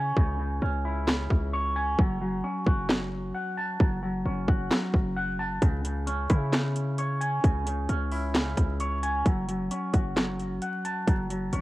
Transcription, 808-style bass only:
0.00 0.12 C#3 loud
0.17 0.60 C#2 loud
0.62 1.27 C#2 loud
1.30 1.96 C#2 loud
1.98 2.42 F#1 loud
2.66 3.32 F#1 loud
3.80 4.24 F#1 loud
4.26 4.47 F#1 loud
4.48 4.70 F#1 loud
4.94 5.59 F#1 loud
5.62 6.27 C#2 loud
6.30 7.40 C#3 loud
7.44 7.87 C#2 loud
7.89 8.55 C#2 loud
8.57 9.23 C#2 loud
9.26 9.69 F#1 loud
9.94 10.59 F#1 loud
11.07 11.51 F#1 loud
11.53 11.61 F#1 loud

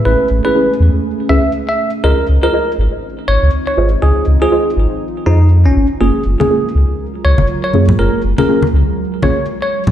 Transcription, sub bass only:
0.06 0.16 A1 loud
0.30 0.41 A1 medium
0.80 0.90 E2 loud
1.29 1.40 C#2 medium
2.04 2.14 C#2 loud
2.29 2.39 C#2 medium
2.78 2.89 G#1 loud
3.28 3.38 G#1 medium
3.43 3.50 C#2 medium
3.77 3.96 G#1 medium
4.02 4.13 C#2 loud
4.27 4.37 C#2 medium
4.77 4.87 G#1 loud
5.26 5.67 F2 medium
5.66 5.73 G#1 medium
5.76 5.86 G#1 medium
6.01 6.11 F#1 loud
6.25 6.36 F#1 medium
6.75 6.85 C#2 loud
7.25 7.35 C#2 medium
7.39 7.46 F#1 medium
7.74 7.93 F#2 medium
7.99 8.09 F#1 loud
8.24 8.34 F#1 medium
8.73 8.84 C#2 loud
9.23 9.33 A#1 medium

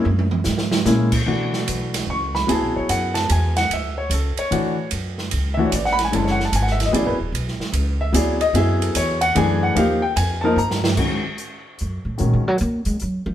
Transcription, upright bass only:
0.05 0.44 F#2 loud
0.46 0.85 G#2 loud
0.85 1.25 A#2 loud
1.26 1.66 B2 medium
1.68 2.06 B1 medium
2.07 2.46 C#2 medium
2.49 2.61 D2 medium
2.62 2.75 B1 medium
2.76 2.88 A1 medium
2.89 3.28 F#2 loud
3.30 3.69 E2 medium
3.70 4.09 D2 medium
4.10 4.34 C#2 medium
4.37 muted upright bass stroke soft
4.51 4.90 A2 medium
4.92 5.30 F#2 medium
5.32 5.71 C#2 medium
5.72 6.11 A1 medium
6.13 6.52 F#1 medium
6.52 6.92 G#1 medium
6.93 7.06 A1 medium
7.06 7.19 F#1 medium
7.20 7.32 D1 medium
7.32 7.58 B1 medium
7.59 muted upright bass stroke soft
7.72 8.12 C#2 loud
8.13 8.53 D2 medium
8.53 8.93 F#2 medium
8.95 9.34 E2 medium
9.36 9.75 F#2 loud
9.75 10.15 D#2 medium
10.16 10.55 F2 loud
10.56 10.96 G2 medium
11.81 12.04 F#2 medium
12.05 12.18 A2 medium
12.20 12.32 A#2 medium
12.33 12.48 D#3 medium
12.48 12.60 F#3 medium
12.61 12.85 A#3 loud
12.86 12.99 G#3 medium
13.02 13.25 F#3 medium
13.26 13.35 F3 medium

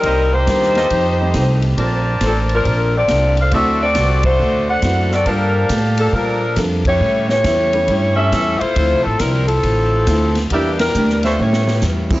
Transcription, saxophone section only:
0.00 0.34 G3 medium
0.00 0.34 C4 medium
0.00 0.32 D#4 medium
0.00 0.34 A#4 medium
0.33 0.92 A#3 medium
0.33 1.64 D#4 medium
0.33 1.64 G4 medium
0.33 1.64 C5 medium
2.26 2.38 F3 medium
2.26 2.38 C4 medium
2.26 2.38 D4 medium
2.26 2.38 A4 medium
2.55 2.93 F3 medium
2.55 2.93 C4 medium
2.55 2.94 D4 medium
2.55 2.94 A#4 medium
2.96 3.36 C4 medium
2.96 3.36 F4 medium
2.96 3.36 A4 medium
2.96 3.37 D5 medium
3.41 3.55 D4 medium
3.41 3.53 A4 medium
3.41 3.55 C5 medium
3.41 3.54 F5 medium
3.54 3.80 C4 medium
3.54 3.80 F#4 medium
3.54 3.80 A4 medium
3.54 3.80 E5 medium
3.83 4.23 C4 medium
3.83 4.23 F#4 medium
3.83 4.23 A4 medium
3.83 4.23 D5 medium
4.25 4.66 A3 medium
4.25 4.66 D4 medium
4.25 4.66 F#4 medium
4.25 4.66 C5 medium
4.70 5.10 D4 medium
4.70 5.10 A4 medium
4.70 5.10 C5 medium
4.70 5.10 F#5 medium
5.12 5.28 C4 medium
5.12 5.28 F#4 medium
5.12 5.25 A4 medium
5.12 5.27 D5 medium
5.26 5.71 F3 medium
5.26 5.71 D4 medium
5.26 5.71 A4 medium
5.26 5.71 A#4 medium
5.99 6.13 F3 medium
5.99 6.14 A#3 medium
5.99 6.12 D4 medium
5.99 6.14 A4 medium
6.13 6.58 F3 medium
6.13 6.58 D4 medium
6.13 6.58 A4 medium
6.13 6.58 A#4 medium
6.88 7.28 A3 medium
6.88 7.29 E4 medium
6.88 7.29 G4 medium
6.88 7.28 C#5 medium
7.30 8.14 A3 medium
7.30 8.14 E4 medium
7.30 8.14 G4 medium
7.30 8.14 C#5 medium
8.16 8.58 C#4 medium
8.16 8.58 G4 medium
8.16 8.58 A4 medium
8.16 8.58 E5 medium
8.58 9.03 A3 medium
8.58 9.02 E4 medium
8.58 9.04 F4 medium
8.58 9.04 C5 loud
9.03 9.20 F3 medium
9.03 9.18 C4 medium
9.03 9.19 E4 medium
9.03 9.20 A4 medium
9.19 9.49 G3 medium
9.19 9.47 C4 medium
9.19 9.47 E4 medium
9.19 9.49 A#4 medium
9.48 10.43 F3 medium
9.48 10.43 C4 medium
9.48 10.43 E4 medium
9.48 10.43 A4 medium
10.50 10.80 E3 medium
10.50 10.80 A#3 medium
10.50 10.79 D4 medium
10.50 10.52 F#4 medium
10.50 10.80 G4 medium
10.80 11.21 G3 medium
10.80 11.21 D4 medium
10.80 11.21 E4 medium
10.80 11.21 A#4 medium
11.25 11.39 A3 medium
11.25 11.40 D4 medium
11.25 11.39 F4 medium
11.25 11.39 C5 medium
11.40 11.83 A3 medium
11.40 11.83 E4 medium
11.40 11.83 G4 medium
11.40 11.83 C#5 medium

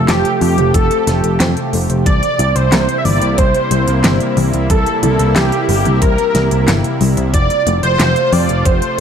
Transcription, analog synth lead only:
0.09 0.39 G4 loud
0.41 0.72 G4 loud
0.74 1.36 A4 loud
2.06 2.57 D5 loud
2.55 2.98 C5 loud
2.98 3.06 E5 medium
3.05 3.39 D5 loud
3.38 4.37 C5 loud
4.70 5.01 A4 medium
5.03 5.34 A4 medium
5.36 5.67 G4 medium
5.69 6.00 G4 loud
6.02 6.64 A#4 loud
7.34 7.80 D5 loud
7.83 8.34 C5 loud
8.32 8.67 D5 loud
8.65 9.00 C5 loud

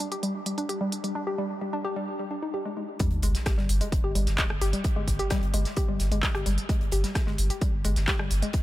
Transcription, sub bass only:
3.12 3.22 G1 medium
3.23 3.34 G1 loud
3.58 3.69 G1 medium
3.69 3.81 G1 loud
4.04 4.15 G1 medium
4.15 4.26 G1 loud
4.27 4.38 G1 medium
4.50 4.61 G1 medium
4.61 4.73 G1 loud
4.96 5.07 G1 medium
5.08 5.19 G1 loud
5.42 5.53 G1 medium
5.54 5.65 G1 loud
5.89 5.99 G1 medium
6.00 6.11 G1 loud
6.12 6.23 G1 medium
6.35 6.46 G1 medium
6.46 6.58 G1 loud
6.81 6.92 G1 medium
6.92 7.04 G1 loud
7.27 7.38 G1 medium
7.39 7.50 G1 loud
7.73 7.84 G1 medium
7.85 7.96 G1 loud
7.96 8.08 G1 medium
8.19 8.30 G1 medium
8.31 8.42 G1 loud

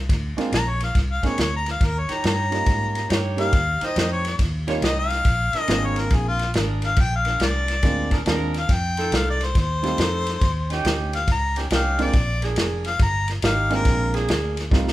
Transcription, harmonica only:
0.55 0.70 A#5 loud
0.69 0.82 C#5 medium
0.84 0.96 F5 medium
1.12 1.28 F5 medium
1.26 1.39 C#5 medium
1.41 1.54 C#5 medium
1.56 1.68 A#5 medium
1.71 1.87 F5 medium
1.85 2.00 A#4 medium
1.99 2.14 C#5 medium
2.13 2.25 A#5 medium
2.27 3.09 A#5 medium
3.40 3.86 F5 loud
3.85 3.97 D#5 medium
3.99 4.12 D#5 medium
4.12 4.35 C#5 medium
4.85 4.98 D#5 medium
4.99 5.61 F5 loud
5.61 5.87 D#5 loud
5.85 6.01 C#5 medium
6.00 6.16 A#4 medium
6.14 6.27 G#4 medium
6.28 6.50 F4 loud
6.86 6.99 F5 medium
7.00 7.13 G5 loud
7.16 7.45 F5 medium
7.44 8.26 D5 loud
8.59 8.74 F5 medium
8.73 9.13 G5 medium
9.16 9.28 F5 medium
9.30 9.46 D5 medium
9.44 9.57 C5 medium
9.59 10.83 C5 loud
11.16 11.29 F5 medium
11.31 11.57 A#5 medium
11.74 12.04 F5 medium
12.02 12.43 D5 medium
12.88 13.01 F5 medium
13.02 13.29 A#5 medium
13.45 13.72 F5 medium
13.75 14.15 A#4 loud

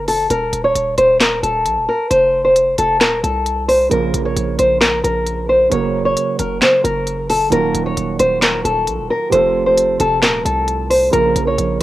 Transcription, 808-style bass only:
0.00 0.28 F#1 loud
0.30 0.52 D#1 loud
0.53 0.74 D#1 loud
0.75 0.97 D#1 loud
0.98 1.41 D#1 loud
1.43 1.67 D#1 loud
1.66 1.78 A#1 loud
1.77 1.88 D#1 loud
2.11 2.76 F1 loud
2.78 3.02 F1 loud
3.01 3.22 D#1 loud
3.23 3.88 C2 loud
3.91 4.13 A#1 loud
4.14 4.35 A#1 loud
4.36 4.58 A#1 loud
4.59 5.02 A#1 loud
5.04 5.69 A#1 loud
5.72 6.15 F#1 loud
6.39 6.61 F#1 loud
6.84 7.49 F#1 loud
7.52 7.74 D#1 loud
7.75 7.96 D#1 loud
7.97 8.19 D#1 loud
8.20 8.63 D#1 loud
8.65 8.89 D#1 loud
8.87 9.00 A#1 loud
8.99 9.09 D#1 loud
9.32 9.97 F1 loud
10.00 10.24 F1 loud
10.23 10.44 D#1 medium
10.45 11.10 C2 loud
11.13 11.35 A#1 loud
11.36 11.57 A#1 loud
11.58 11.80 A#1 loud

